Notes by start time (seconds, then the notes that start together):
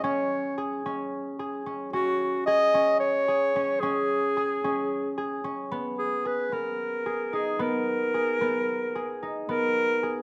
Already playing: B3 G#4
0.04 C#4 C#5
0.58 G#4
0.86 C#4
1.39 G#4
1.66 C#4
1.93 C#4 F#4
2.46 G#4 D#5
2.74 C#4
3.00 C#5
3.28 G#4
3.56 C#4
3.80 C#4 G#4
4.37 G#4
4.64 C#4
5.18 G#4
5.44 C#4
5.71 B3
5.98 G#4
6.25 G#4 B4
6.52 B3 A#4
7.06 G#4
7.33 D#4 G#4
7.59 B3 A#4
8.14 G#4
8.41 B3
8.95 G#4
9.23 D#4
9.49 B3 A#4
10.03 G#4